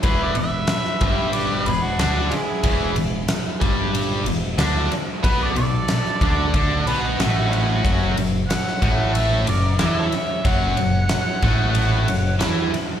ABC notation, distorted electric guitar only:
X:1
M:4/4
L:1/8
Q:1/4=92
K:E
V:1 name="Distorted electric guitar" clef=bass
[E,,E,] E,, z [=G,,=G,]2 E,, [=D,=D] z | [E,,E,] E,, z [=G,,=G,]2 E,, [=D,=D] z | [B,,B,] B,, z [=D,=D] [D,D] [B,,B,] [A,,A,]2 | [F,,F,] F,, z [A,,A,]2 F,, [E,E] z |
[F,,F,] F,, z [A,,A,]2 F,, [E,E] z |]